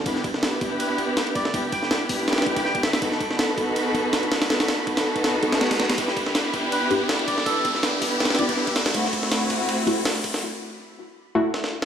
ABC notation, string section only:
X:1
M:4/4
L:1/16
Q:"Swing 16ths" 1/4=162
K:Em
V:1 name="String section"
[B,DEG]3 [B,DEG]12- [B,DEG] | [B,DEG]3 [B,DEG]12- [B,DEG] | [B,^DFA]3 [B,DFA]12- [B,DFA] | [B,^DFA]3 [B,DFA]12- [B,DFA] |
[B,DEG]3 [B,DEG]12- [B,DEG] | [B,DEG]3 [B,DEG]12- [B,DEG] | [A,CEF]3 [A,CEF]12- [A,CEF] | z16 |]